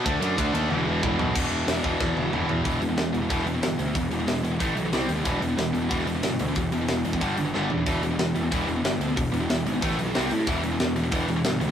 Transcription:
<<
  \new Staff \with { instrumentName = "Distorted electric guitar" } { \clef bass \time 4/4 \key d \major \tempo 4 = 184 <d a d'>8 <d a d'>8 <d a d'>8 <d a d'>8 <e, b, e>8 <e, b, e>8 <e, b, e>8 <e, b, e>8 | <e, b, e>4. <e, b, e>4. <e, b, e>4 | \key e \minor <e, b, e>8 <e, b,>16 <e, b,>16 <e, b,>8 <e, b,>16 <e, b,>16 <e, b, e>8 <e, b,>16 <e, b,>16 <e, b,>8 <e, b,>16 <e, b,>16 | <e, b,>8 <e, b,>16 <e, b,>16 <e, b,>8 <e, b,>16 <e, b,>16 <a, e a>8 <a, e>16 <a, e>16 <c g c'>8 <c g>16 <c g>16 |
<e, b, e>8 <e, b,>16 <e, b,>16 <e, b,>8 <e, b,>16 <e, b,>16 <e, b, e>8 <e, b,>16 <e, b,>16 <e, b,>8 <e, b,>16 <e, b,>16 | <e, b,>8 <e, b,>16 <e, b,>16 <e, b,>8 <e, b,>16 <e, b,>16 <g, d g>8 <g, d>16 <g, d>16 <g, d g>8 <g, d>16 <g, d>16 | <e, b, e>8 <e, b,>16 <e, b,>16 <e, b,>8 <e, b,>16 <e, b,>16 <e, b, e>8 <e, b,>16 <e, b,>16 <e, b,>8 <e, b,>16 <e, b,>16 | <e, b,>8 <e, b,>16 <e, b,>16 <e, b,>8 <e, b,>16 <e, b,>16 <a, e a>8 <a, e>16 <a, e>16 <c g c'>8 <c g>16 <c g>16 |
<e, b, e>8 <e, b,>16 <e, b,>16 <e, b,>8 <e, b,>16 <e, b,>16 <e, b, e>8 <e, b,>16 <e, b,>16 <e, b,>8 <e, b,>16 b,16 | }
  \new Staff \with { instrumentName = "Picked electric bass" } { \clef bass \time 4/4 \key d \major d,8 fis,8 d,8 dis,8 e,,8 e,,8 e,,8 b,,8 | e,,8 e,,8 e,,8 e,,8 e,8 e,,8 e,,8 e,8 | \key e \minor e,,8 e,,8 e,,8 e,,8 e,,8 e,,8 g,,8 d,8 | e,,8 e,,8 e,,8 e,,8 a,,8 b,,8 c,8 dis,8 |
e,,8 e,,8 e,,8 e,,8 e,,8 e,,8 g,,8 d,8 | e,,8 e,,8 e,,8 e,,8 g,,8 g,,8 g,,8 e,8 | e,,8 e,,8 e,,8 e,,8 e,,8 e,,8 g,,8 d,8 | e,,8 e,,8 e,,8 gis,,8 a,,8 b,,8 c,8 a,8 |
e,,8 e,,8 e,,8 e,,8 e,,8 e,,8 g,,8 d,8 | }
  \new DrumStaff \with { instrumentName = "Drums" } \drummode { \time 4/4 <bd cymr>8 cymr8 <bd cymr>8 cymr8 tommh4 <bd toml>8 tomfh8 | <cymc bd>4 <hho sn>8 bd8 <bd sn>8 tommh8 toml8 tomfh8 | <hho bd>8 hho8 <hho sn>8 hho8 <hho bd>16 sn16 hho8 <hho sn>8 hho8 | <hho bd>8 hho8 <hho sn>8 hho8 <hho bd>8 hho8 <hho sn>8 hho8 |
<hho bd>8 hho8 <hho sn>8 hho8 <hho bd>16 sn16 hho8 <hho sn>8 hho8 | <hho bd>8 hho8 <hho sn>8 hho16 bd16 <hho bd>8 hho8 sn8 tomfh8 | <hho bd>8 hho8 <hho sn>8 hho8 <hho bd>8 hho8 <hho sn>8 hho8 | <hho bd>8 hho8 <hho sn>8 hho8 <hho bd>16 sn16 hho8 <hho sn>8 hho8 |
<hho bd>8 hho8 <hho sn>8 hho8 <hho bd>8 hho8 <hho sn>8 hho8 | }
>>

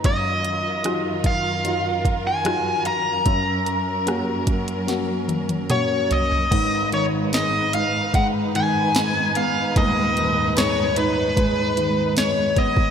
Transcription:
<<
  \new Staff \with { instrumentName = "Lead electric guitar" } { \time 4/4 \key aes \dorian \tempo 4 = 74 ees''4. f''4~ f''16 aes''8. bes''8~ | bes''2. des''8 ees''8~ | ees''8 des''8 ees''8 f''8 ges''8 aes''4 f''8 | ees''4 des''8 ces''4. des''8 ees''8 | }
  \new Staff \with { instrumentName = "String section" } { \time 4/4 \key aes \dorian << { <ges, bes'>1~ | <ges, bes'>1 | <aes, ces''>1~ | <aes, ces''>1 | } \\ { <ees f'>1 | <ges des'>1 | <aes ees'>1~ | <aes ees'>1 | } >> }
  \new Staff \with { instrumentName = "Grand piano" } { \time 4/4 \key aes \dorian ges,4 <ges ees' f'>4 <ges ees' f'>4 <ges ees' f'>4 | ges,4 <bes des' ges'>4 <bes des' ges'>4 <bes des' ges'>4 | <aes,, aes,>8 ees8 aes8 ees'8 aes8 ees8 aes8 ces'8 | <ees,, ees,>8 ees8 aes8 ees'8 aes8 ees8 aes8 ces'8 | }
  \new DrumStaff \with { instrumentName = "Drums" } \drummode { \time 4/4 <hh bd>8 hh8 <hh ss>8 <hh bd>8 hh8 <hh bd>8 <hh ss>8 hh8 | <hh bd>8 hh8 <hh ss>8 <hh bd>16 hh16 <hh sn>8 <hh tommh>16 <hh tommh>16 <hh toml>8 <hh tomfh>16 tomfh16 | <cymc hh bd>8 hh8 <hh sn>8 hh8 <hh bd>8 hh8 <hh sn>8 hh8 | <hh bd>8 hh8 <hh sn>8 hh8 <hh bd>8 hh8 <hh sn>8 <hh bd>16 bd16 | }
>>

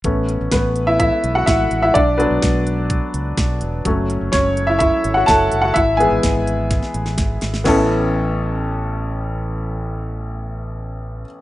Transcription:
<<
  \new Staff \with { instrumentName = "Upright piano" } { \time 4/4 \key a \major \tempo 4 = 126 r4 <b b'>8. <e' e''>16 <e' e''>8. <fis' fis''>16 <e' e''>8. <e' e''>16 | <d' d''>8 b'4. r2 | r4 <cis' cis''>8. <e' e''>16 <e' e''>8. <fis' fis''>16 <a' a''>8. <fis' fis''>16 | <e' e''>8 <gis' gis''>4. r2 |
<b cis' e' a'>1~ | <b cis' e' a'>1 | }
  \new Staff \with { instrumentName = "Upright piano" } { \time 4/4 \key a \major <a b cis'>8 r2. r8 | r8 <fis b d'>8 r2. | <fis a cis'>4. r2 r8 | r8 <e gis b>4. r2 |
a,,1~ | a,,1 | }
  \new Staff \with { instrumentName = "Fingered electric bass" } { \clef bass \time 4/4 \key a \major a,,8. a,,16 a,,4~ a,,16 r16 b,,8 a,,8 a,,8 | b,,8. b,,16 b,,4~ b,,16 r16 cis,8 b,,8 e,,8 | fis,,8. fis,,16 fis,,4~ fis,,16 r16 gis,,8 fis,,8 fis,,8 | gis,,8. gis,,16 gis,,4~ gis,,16 r16 a,,8 gis,,8 gis,,8 |
a,,1~ | a,,1 | }
  \new DrumStaff \with { instrumentName = "Drums" } \drummode { \time 4/4 <hh bd>8 hh8 <hh bd sn>8 hh8 <hh bd>8 hh8 <hh bd sn>8 hh8 | <hh bd>8 hh8 <hh bd sn>8 hh8 <hh bd>8 hh8 <hh bd sn>8 hh8 | <hh bd>8 hh8 <hh bd sn>8 hh8 <hh bd>8 hh8 <hh bd sn>8 hh8 | <hh bd>8 hh8 <hh bd sn>8 hh8 <hh bd sn>16 sn16 hh16 sn16 <hh bd sn>8 <hh sn>16 sn16 |
<cymc bd sn>4 r4 r4 r4 | r4 r4 r4 r4 | }
>>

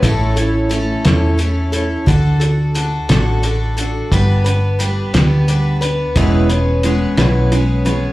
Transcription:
<<
  \new Staff \with { instrumentName = "Twelve-string acoustic guitar" } { \time 6/8 \key d \lydian \tempo 4. = 59 <a, a cis' e' a'>8 <cis' e' a'>8 <a cis' e' a'>8 <a, a cis' e' a'>8 <a cis' e' a'>8 <cis' e' a'>8 | <d d' fis' a'>8 <d' fis' a'>8 <d d' fis' a'>8 <d d' fis' a'>8 <d d' fis' a'>8 <d' fis' a'>8 | <g b d' b'>8 <b d' b'>8 <g b d' b'>8 <g b d' b'>8 <g b d' b'>8 <b d' b'>8 | <e, e gis b cis' b'>8 <gis b cis' b'>8 <gis b cis' b'>8 <e, e gis b cis' b'>8 <gis b cis' b'>8 <gis b cis' b'>8 | }
  \new Staff \with { instrumentName = "Clean electric guitar" } { \clef bass \time 6/8 \key d \lydian r2. | r2. | r2. | <e, e gis>8 <e, e>8 <e, e>8 <e, e>8 <e, e>8 <e, e>8 | }
  \new Staff \with { instrumentName = "Fingered electric bass" } { \clef bass \time 6/8 \key d \lydian a,,4. e,4. | d,4. a,,4. | g,,4. d,4. | e,,4. b,,4. | }
  \new DrumStaff \with { instrumentName = "Drums" } \drummode { \time 6/8 <hh bd>8 hh8 hh8 <hh sn>8 hh8 hh8 | <hh bd>8 hh8 hh8 <hh sn>8 hh8 hh8 | <hh bd>8 hh8 hh8 <hh sn>8 hh8 hh8 | <hh bd>8 hh8 hh8 <hh sn>8 hh8 hh8 | }
>>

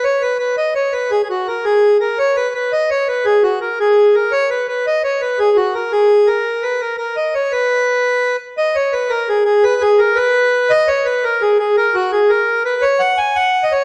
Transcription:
\new Staff \with { instrumentName = "Accordion" } { \time 6/8 \key b \major \tempo 4. = 112 cis''8 b'8 b'8 dis''8 cis''8 b'8 | gis'16. gis'32 fis'8 ais'8 gis'4 ais'8 | cis''8 b'8 b'8 dis''8 cis''8 b'8 | gis'8 fis'8 ais'8 gis'4 ais'8 |
cis''8 b'8 b'8 dis''8 cis''8 b'8 | gis'8 fis'8 ais'8 gis'4 ais'8~ | ais'8 b'8 ais'8 ais'8 dis''8 cis''8 | b'2~ b'8 r8 |
dis''8 cis''8 b'8 ais'8 gis'8 gis'8 | b'8 gis'8 ais'8 b'4. | dis''8 cis''8 b'8 ais'8 gis'8 gis'8 | ais'8 fis'8 gis'8 ais'4 b'8 |
cis''8 fis''8 gis''8 fis''8. dis''16 cis''8 | }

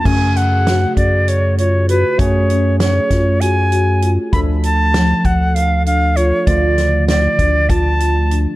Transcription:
<<
  \new Staff \with { instrumentName = "Flute" } { \time 7/8 \key fis \minor \tempo 4 = 98 gis''8 fis''4 d''8 cis''8 cis''8 b'8 | cis''4 cis''4 gis''4 r8 | b''8 a''4 fis''8 f''8 f''8 cis''8 | d''4 d''4 a''4 r8 | }
  \new Staff \with { instrumentName = "Marimba" } { \time 7/8 \key fis \minor cis'4 fis'4 r8 eis'8 fis'8~ | fis'8 cis'4 eis'8 fis'8 fis'8 eis'8 | d'4 f4 r8 d'8 f'8~ | f'8 cis4 d'8 f'8 f'8 d'8 | }
  \new Staff \with { instrumentName = "Tine electric piano" } { \time 7/8 \key fis \minor <cis a fis' gis'>2.~ <cis a fis' gis'>8 | <a cis' fis' gis'>2.~ <a cis' fis' gis'>8 | <f a d' a'>2.~ <f a d' a'>8 | <d f a f'>2.~ <d f a f'>8 | }
  \new Staff \with { instrumentName = "Analog synth bass" } { \clef bass \time 7/8 \key fis \minor fis,4. fis,2 | fis,4. fis,2 | d,4. d,2 | d,4. d,2 | }
  \new DrumStaff \with { instrumentName = "Drums" } \drummode { \time 7/8 <cymc bd>8 hh8 <hh sn>8 <hh bd>8 hh8 hh8 hh8 | <hh bd>8 hh8 <hh sn>8 <hh bd sn>8 hh8 hh8 hh8 | <hh bd>8 hh8 <hh sn>8 <hh bd>8 hh8 hh8 hh8 | <hh bd>8 <hh sn>8 <hh sn>8 <hh bd>8 <hh bd>8 hh8 hh8 | }
>>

